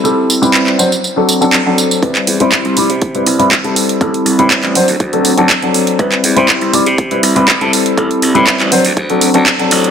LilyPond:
<<
  \new Staff \with { instrumentName = "Grand piano" } { \time 4/4 \key c \lydian \tempo 4 = 121 <g c' e' a'>8. <g c' e' b'>8. <fis c' d' c''>16 r8 <fis c' d' a'>8 <fis c' d' a'>16 r16 <fis c' d' a'>8. | <c' e' b'>8. <g c' e' c''>8. <g c' e' d''>16 r8 <g c' e' b'>8 <g c' e' b'>16 r16 <g c' e' a'>8. | <g c' e' a'>8. <g c' e' b'>8. <fis c' d' c''>16 r8 <fis c' d' a'>8 <fis c' d' a'>16 r16 <fis c' d' a'>8. | <g c' e' b'>8. <g c' e' c''>8. <g c' e' d''>16 r8 <g c' e' b'>8 <g c' e' b'>16 r16 <g c' e' a'>8. |
<g c' e' a'>8. <g c' e' b'>8. <fis c' d' c''>16 r8 <fis c' d' a'>8 <fis c' d' a'>16 r16 <fis c' d' a'>8. | }
  \new Staff \with { instrumentName = "Slap bass" } { \clef bass \time 4/4 \key c \lydian r1 | c,16 r16 e,16 c8 c,16 r16 c8. c,8 r16 c16 r8 | a,,16 r16 c,16 a,8 a,,16 r16 d,16 d,8. d,16 r4 | c,16 r16 e,16 c8 c,16 r16 c8. c,8 c,16 c16 r8 |
a,,16 r16 c,16 a,8 a,,16 r16 d,16 d,8. d,16 r8 a,,8 | }
  \new DrumStaff \with { instrumentName = "Drums" } \drummode { \time 4/4 tamb8 tamb16 tamb16 <hc tamb>16 hc16 tamb16 tamb16 tamb8 tamb16 tamb16 <hc tamb>8 tamb16 tamb16 | <hh bd>16 <hc hh>16 hho16 hh16 <hc hh bd>16 hh16 hho16 hh16 <hh bd>16 hh16 hho16 hh16 <hc hh bd>16 hh16 hho16 hh16 | <hh bd>16 hh16 hho16 hh16 <hc hh bd>16 <hc hh>16 hho16 hho16 <hh bd>16 hh16 hho16 hh16 <hc hh bd>16 hh16 hho16 hh16 | <hh bd>16 <hc hh>16 hho16 hh16 <hc hh bd>16 hh16 hho16 hh16 <hh bd>16 hh16 hho16 hh16 <hc hh bd>16 hh16 hho16 hh16 |
<hh bd>16 hh16 hho16 hh16 <hc hh bd>16 <hc hh>16 hho16 hho16 <hh bd>16 hh16 hho16 hh16 <hc hh bd>16 hh16 hho16 hh16 | }
>>